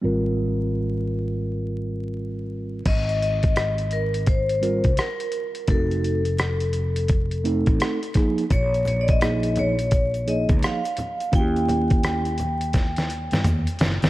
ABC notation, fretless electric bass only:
X:1
M:4/4
L:1/16
Q:"Swing 16ths" 1/4=85
K:Ab
V:1 name="Fretless electric bass" clef=bass
A,,,16 | A,,,8- A,,,3 C,, z4 | F,,,8- F,,,3 =A,,, z4 | B,,,8- B,,,3 D,, z4 |
E,,8- E,,3 G,, E,, z _G,,, =G,,, |]